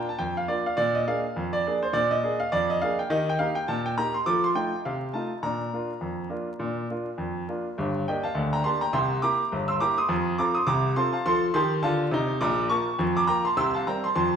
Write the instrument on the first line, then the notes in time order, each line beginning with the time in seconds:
grand piano
0.09 A5
0.19 F2 G5
0.37 F5
0.48 A#3 D4 F4 D5
0.66 F5
0.77 A#2 D4 D5
0.95 D#5
1.07 A#3 D4 G#4 F5
1.36 F2
1.53 D5
1.67 A#3 D4 G#4
1.82 C5
1.93 A#2 D4 D5
2.11 D#5
2.23 A#3 D4 G#4
2.40 F5
2.52 F2 D5
2.70 D#5
2.82 A#3 D4 G#4 F5
2.99 G5
3.10 D#3 G4 D#5
3.29 G5
3.39 A#3 D#4 G4 F5
3.55 G5
3.68 A#2 A5
3.86 G5
3.97 A#3 D#4 G4 A#5
4.14 C6
4.26 F3 A4 D6
4.44 C6
4.55 A3 D#4 F4 G5
4.85 C3 F5
5.13 A3 D#4 F4 A5
5.43 A#2 D4 A#5
5.73 A#3 D4 F4
6.01 F2
6.30 A#3 D4 F4
6.59 A#2 D4
6.90 A#3 D4 F4
7.18 F2
7.48 A#3 D4 F4
7.78 G1 G2
8.08 A#3 D4 G4 D#5 G5
8.23 F5 A5
8.35 D2 D3
8.53 G5 A#5
8.64 A#3 D4 G4 A5 C6
8.81 G5 A#5
8.93 C2 C3 G5 C6
9.22 A#3 E4 G4 A#5 D6
9.52 G1 G2
9.68 C6 E6
9.80 A#3 E4 G4 A#5 D6
9.98 C6 D#6
10.09 F2 F3
10.38 C4 F4 A4 A#5 D6
10.54 C6 D#6
10.67 C2 C3 A#5 D6
10.96 C4 F4 A4 A5 C6
11.13 F5 A5
11.26 F3 A4 A5 C6
11.54 D#3 G4 A5 C6
11.82 D3 F4 F5 A5
12.11 C3 D#4
12.41 A#1 A#2 A#5 D6
12.69 A#3 F4 A#4 A5 C#6
12.99 F2 F3
13.17 A#5 D6
13.27 A#3 F4 A#4 G5 A#5
13.45 A5 C6
13.57 C2 C3 C6 E6
13.74 F5 A5
13.87 G3 C4 A#4 G5 A#5
14.04 A5 C6
14.15 F2 F3 A5 C6